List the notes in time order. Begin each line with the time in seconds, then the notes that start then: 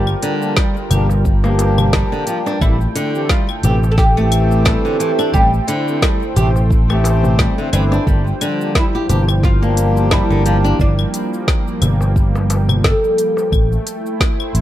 Already playing: G1 G3 F4 G4 A#4 G5
0.07 cabasa, claves
0.22 D3, closed hi-hat, cabasa
0.41 F3 A#3 D4 G4, cabasa
0.57 G3, kick, snare, cabasa
0.76 cabasa
0.90 G1 F3 A#3 D4 G4, closed hi-hat, darbuka dum, cabasa, claves
1.09 darbuka ka, cabasa
1.25 kick, cabasa
1.42 F3 A#3 D4 G4, darbuka tek, cabasa
1.59 closed hi-hat, darbuka tek, cabasa
1.78 darbuka dum, cabasa, claves
1.93 G3, kick, snare, cabasa
2.12 D3, cabasa
2.27 F3, closed hi-hat, cabasa
2.46 D4, darbuka tek, cabasa
2.61 A1 E3 G3 A3 C4 E4 G4, kick, cabasa, claves
2.81 cabasa
2.94 D3 A4, closed hi-hat, cabasa
3.14 E3 A3 C4 G4, cabasa
3.29 G3 F4, kick, snare, cabasa
3.49 cabasa, claves
3.63 A1 E3 A3 C4 G4, closed hi-hat, darbuka ka, darbuka dum, cabasa
3.83 darbuka ka, cabasa
3.92 A4
3.98 G4, kick, snare, cabasa
4.15 E3 A3 C4 G4, darbuka ka, cabasa
4.32 closed hi-hat, cabasa, claves
4.46 C5
4.51 cabasa
4.65 G3 A4, kick, snare, cabasa
4.85 D3, cabasa
5.00 E3, closed hi-hat, cabasa
5.19 D4, cabasa, claves
5.33 A1 E3 G3 A3 C4 G4, kick, cabasa
5.54 cabasa
5.67 D3 E4, closed hi-hat, cabasa
5.87 E3 A3 C4 G4, cabasa
6.02 G3, kick, snare, cabasa, claves
6.22 cabasa
6.36 A1 E3 A3 C4 G4, closed hi-hat, darbuka dum, cabasa
6.56 darbuka ka, cabasa
6.70 kick, cabasa
6.89 E3 A3 C4 G4, darbuka tek, cabasa, claves
7.04 closed hi-hat, darbuka tek, cabasa
7.24 darbuka dum, cabasa
7.39 G3, kick, snare, cabasa
7.57 D3 E3 A3 C4 C5, cabasa
7.72 G1 E3 A3 C4 D4 E4, closed hi-hat, cabasa, claves
7.92 D4, darbuka tek, cabasa
8.06 G1 F3 G3 A#3 D4 G4, kick, cabasa
8.20 F3
8.27 cabasa
8.41 D3, closed hi-hat, cabasa, claves
8.59 F3 A#3 D4 G4, cabasa
8.75 G3 E4, kick, snare, cabasa
8.95 G4, cabasa
9.08 G1 F3 A#3 D4 G4, closed hi-hat, darbuka ka, darbuka dum, cabasa
9.28 darbuka ka, cabasa, claves
9.40 A#3, kick, snare, cabasa
9.44 F4
9.60 F3 A#3 D4 G4, darbuka ka, cabasa
9.77 closed hi-hat, cabasa
9.97 cabasa
10.11 G3 E4, kick, snare, cabasa, claves
10.30 G1 D3, cabasa
10.46 F3, closed hi-hat, cabasa
10.64 D4, cabasa
10.79 G1 D4, kick, cabasa
10.99 cabasa, claves
11.14 closed hi-hat, cabasa
11.34 cabasa
11.48 kick, snare, cabasa
11.68 cabasa
11.82 G1, closed hi-hat, darbuka dum, cabasa, claves
12.01 darbuka ka, cabasa
12.16 kick, cabasa
12.36 darbuka tek, cabasa
12.50 closed hi-hat, darbuka tek, cabasa
12.69 darbuka dum, cabasa, claves
12.84 A4, kick, snare, cabasa
13.04 cabasa
13.18 closed hi-hat, cabasa
13.37 darbuka tek, cabasa
13.52 A1 A3, kick, cabasa, claves
13.72 cabasa
13.87 closed hi-hat, cabasa
13.95 E4
14.06 cabasa
14.20 kick, snare, cabasa
14.27 C5
14.40 cabasa, claves
14.55 A1, closed hi-hat, cabasa